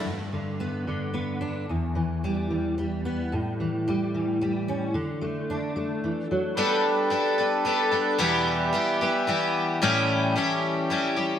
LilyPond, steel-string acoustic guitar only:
\new Staff \with { instrumentName = "Steel-string acoustic guitar" } { \clef bass \time 3/4 \key g \major \tempo 4 = 111 << { r4 b4 b8 d'8 | r4 g4 g8 b8 | r4 g4 g8 cis'8 | r4 d'2 |
r2. | r2. | r2. | } \\ { g,8 d4 d4. | e,8 e4 e4. | a,8 e4 e4. | d8 a4 a8 e8 fis8 |
r2. | r2. | r2. | } >> }